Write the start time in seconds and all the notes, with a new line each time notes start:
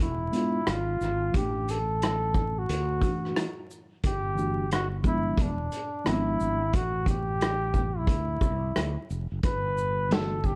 0.00 E1 E4, closed hi-hat
0.32 G#3 B3 D4, closed hi-hat, shaker
0.36 F4
0.67 G#1 F4, cross-stick, closed hi-hat
1.01 G#1, cross-stick, shaker
1.32 A1 E3 A3 D4, kick, closed hi-hat
1.36 G4
1.69 A4, closed hi-hat, shaker
2.02 cross-stick, closed hi-hat
2.34 kick, shaker
2.59 F#4
2.69 D2, closed hi-hat
3.01 E3 A3 D4 F#4, kick, closed hi-hat, shaker
3.25 cross-stick
3.36 cross-stick, closed hi-hat
3.71 shaker
4.04 G1 G4, kick, closed hi-hat
4.35 E3 A3 D4, shaker
4.40 F#4
4.71 F#4, cross-stick, closed hi-hat
5.03 F3 G#3 B3 D4, kick, shaker
5.08 E4
5.37 E1, kick, closed hi-hat
5.42 D4
5.72 closed hi-hat, shaker
6.04 G#1 F3 G#3 B3, cross-stick, closed hi-hat
6.09 C4 E4
6.15 D4
6.40 G#1, shaker
6.73 A1 F#4, kick, closed hi-hat
7.06 G4, kick, closed hi-hat, shaker
7.41 cross-stick, closed hi-hat
7.74 kick, shaker
7.98 E4
8.07 D2, kick, closed hi-hat
8.41 C2, kick, shaker
8.76 D2, cross-stick, closed hi-hat
9.10 F1, shaker
9.32 F#1
9.43 G1 B4, kick, closed hi-hat
9.78 shaker
10.09 E3 A3 D4, snare, closed hi-hat
10.13 F#4 A4
10.44 G4, kick, shaker